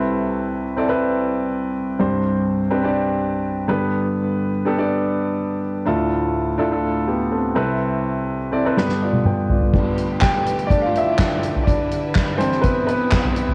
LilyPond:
<<
  \new Staff \with { instrumentName = "Grand piano" } { \time 4/4 \key g \mixolydian \tempo 4 = 124 << { r1 | r1 | r1 | r2 r8 <b g'>8 <c' a'>4 |
r2 r8 <f' d''>8 <b' g''>8 <f' d''>8~ | <f' d''>8 r8 <g' g''>4 \tuplet 3/2 { <d' d''>8 <f' f''>8 <e' e''>8 } <d' d''>4 | <d' d''>4 r8 <c' c''>8 <b b'>8 <b b'>4 r8 | } \\ { <c' e' a' b'>4~ <c' e' a' b'>16 r16 <c' e' a' d''>16 <c' e' a' b'>4.~ <c' e' a' b'>16 r8 | <c' d' g' c''>4~ <c' d' g' c''>16 r16 <c' d' g' b'>16 <c' d' g' d''>4.~ <c' d' g' d''>16 <b d' g' b'>8~ | <b d' g' b'>4~ <b d' g' b'>16 r16 <b d' g' a'>16 <b d' g' d''>4.~ <b d' g' d''>16 r8 | <d' e' f' a'>4~ <d' e' f' a'>16 r16 <d' e' f' a'>16 <d' e' f' a'>8. r4 <c' e' a' b'>8~ |
<c' e' a' b'>4~ <c' e' a' b'>16 r16 <c' e' a' d''>16 <c' e' a' b'>16 <b d' g' b'>4.~ <b d' g' b'>16 r16 | r1 | r1 | } >> }
  \new Staff \with { instrumentName = "Grand piano" } { \clef bass \time 4/4 \key g \mixolydian <c, c>2.~ <c, c>8 r8 | <c, g,>2.~ <c, g,>8 <g, d>8~ | <g, d>2.~ <g, d>8 r8 | <d, a,>2.~ <d, a,>8 <c, c>8~ |
<c, c>2 <g, d>2 | <g b d'>4. r2 r8 | r4. <e g d'>8 r2 | }
  \new Staff \with { instrumentName = "String section" } { \time 4/4 \key g \mixolydian << { r1 | r1 | r1 | r1 |
r1 | <d b'>1~ | <d b'>1 | } \\ { r1 | r1 | r1 | r1 |
r1 | <a g'>1 | <g e'>1 | } >> }
  \new DrumStaff \with { instrumentName = "Drums" } \drummode { \time 4/4 r4 r4 r4 r4 | r4 r4 r4 r4 | r4 r4 r4 r4 | r4 r4 r4 r4 |
r4 r4 sn16 sn8 tommh16 toml8 tomfh16 tomfh16 | <cymc bd>8 hh8 <hc hh bd sn>8 hh16 hh16 <hh bd>8 hh8 <hc hh bd sn>8 hh16 tomfh16 | <hh bd>8 hh8 <hc hh bd sn>8 hh16 sn16 <hh bd>8 hh8 <hc hh bd sn>16 tomfh16 hh16 tomfh16 | }
>>